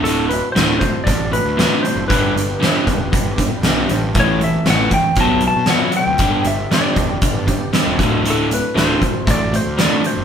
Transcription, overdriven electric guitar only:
\new Staff \with { instrumentName = "Overdriven electric guitar" } { \clef bass \time 4/4 \key d \mixolydian \tempo 4 = 117 <d, a, d>8 <d, a,>8 <d, a, d>8 <d, a,>8 <d, a,>8 <d, a,>8 <d, a, d>8 <d, a,>8 | <g, d g>8 <g, d>8 <g, d g>8 <g, d>8 <g, d>8 <g, d>8 <g, d g>8 <g, d>8 | <a, e a>8 <a, e>8 <a, e a>8 <a, e>8 <b, fis b>8 <b, fis>8 <b, fis b>8 <b, fis>8 | <g, d g>8 <g, d>8 <g, d g>8 <g, d>8 <g, d>8 <g, d>8 <g, d g>8 <d, a, d>8 |
<d, a, d>8 <d, a,>8 <d, a, d>8 <d, a,>8 <d, a,>8 <d, a,>8 <d, a, d>8 <d, a,>8 | }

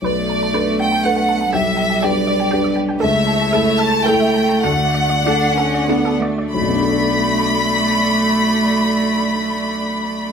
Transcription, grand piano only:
\new Staff \with { instrumentName = "Grand piano" } { \time 3/4 \key b \minor \tempo 4 = 101 b,,4 <d' a' b'>4 <d' a' b'>4 | b,,4 <d' g' b'>4 <d' g' b'>4 | cis,4 <a e' a'>4 <a e' a'>4 | d,4 <a d' a'>4 <a d' a'>4 |
<b,, b, b d' a' d''>2.~ | <b,, b, b d' a' d''>2. | }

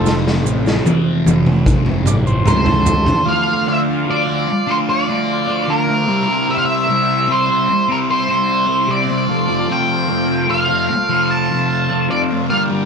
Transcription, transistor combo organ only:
<<
  \new Staff \with { instrumentName = "Transistor combo organ" } { \time 4/4 \key f \major \tempo 4 = 75 a'16 r2 r16 d''16 c''16 bes'16 a'8. | <f f' d''>2.~ <f f' d''>8 <g e' c''>8~ | <g e' c''>2.~ <g e' c''>8 <a f' c''>8~ | <a f' c''>2.~ <a f' c''>8 <bes g' d''>8 | }
  \new Staff \with { instrumentName = "Transistor combo organ" } { \time 4/4 \key f \major <f a c'>8 r2. r8 | r1 | r1 | r1 | }
>>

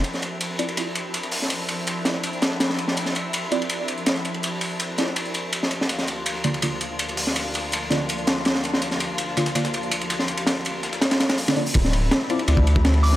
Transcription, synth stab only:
\new Staff \with { instrumentName = "Synth stab" } { \time 4/4 \key d \minor \tempo 4 = 164 r4. <c' e' f' d''>16 r16 <c' e' f' d''>16 r4. r16 | r4. <c' e' f' d''>16 r2 r16 | r4. <c' e' f' d''>16 r2 r16 | r4. <c' e' f' d''>16 r2 r16 |
r4. <d bes d' f' d''>16 r16 <d bes d' f' d''>16 r4. r16 | r4. <d bes d' f' d''>16 r2 r16 | r4. <d bes d' f' d''>16 r16 <d bes d' f' d''>16 r4. r16 | r2. r16 <d bes d' f' d''>16 <d bes d' f' d''>16 r16 |
r4. <c' e' f' d''>16 r16 <c' e' f' d''>16 r4. r16 | }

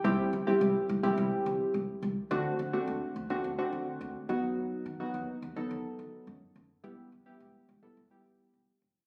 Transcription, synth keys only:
\new Staff \with { instrumentName = "Synth keys" } { \time 4/4 \key c \lydian \tempo 4 = 106 <g c' e' g'>8 r16 <g c' e' g'>8 r8 <g c' e' g'>4~ <g c' e' g'>16 r4 | <a c' d' fis'>8 r16 <a c' d' fis'>8 r8 <a c' d' fis'>16 r16 <a c' d' fis'>4 r16 <fis b dis' fis'>8~ | <fis b dis' fis'>8 r16 <fis b dis' fis'>8 r8 <fis b dis' a'>4~ <fis b dis' a'>16 r4 | <g b e' g'>8 r16 <g b e' g'>8 r8 <g b e' a'>16 r16 <g b e' g'>4 r8. | }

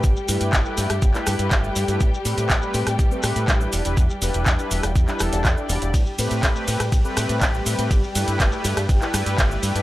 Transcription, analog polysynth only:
\new Staff \with { instrumentName = "Analog polysynth" } { \time 4/4 \key a \minor \tempo 4 = 122 r8 <a e' g' b'>8. <a e' g' b'>8 r8 <a e' g' b'>8. <a e' g' b'>8. <a e' g' b'>16 | r8 <a c' g' b'>8. <a c' g' b'>8 r8 <a c' g' b'>8. <g d' e' b'>8. <g d' e' b'>16 | r8 <g d' e' b'>8. <g d' e' b'>8 r8 <g d' e' b'>16 <g d' e' a'>8. <g d' e' d''>8. | r8 <a c' g' b'>8. <a c' g' b'>8 r8 <a c' g' b'>8. <c' g' b'>8. <a c' g' b'>16 |
r8 <a e' g' b'>8. <a e' g' b'>8 r8 <a e' g' b'>8. <a e' g' b'>8. <a e' g' b'>16 | }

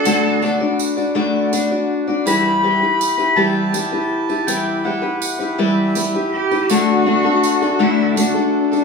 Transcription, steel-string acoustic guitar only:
\new Staff \with { instrumentName = "Steel-string acoustic guitar" } { \time 6/8 \key d \major \tempo 4. = 54 <d a d' fis' d''>8 <a d' fis' d''>16 <d' fis' d''>8 <d' fis' d''>16 <d a d' fis' d''>8 <a d' fis' d''>16 <d' fis' d''>8 <d' fis' d''>16 | <e g e' g' b'>8 <g e' g' b'>16 <e' g' b'>8 <e' g' b'>16 <e g e' g' b'>8 <g e' g' b'>16 <e' g' b'>8 <e' g' b'>16 | <e g e' g' b'>8 <g e' g' b'>16 <e' g' b'>8 <e' g' b'>16 <e g e' g' b'>8 <g e' g' b'>16 <e' g' b'>8 <e' g' b'>16 | <d a d' fis' a'>8 <a d' fis' a'>16 <d' fis' a'>8 <d' fis' a'>16 <d a d' fis' a'>8 <a d' fis' a'>16 <d' fis' a'>8 <d' fis' a'>16 | }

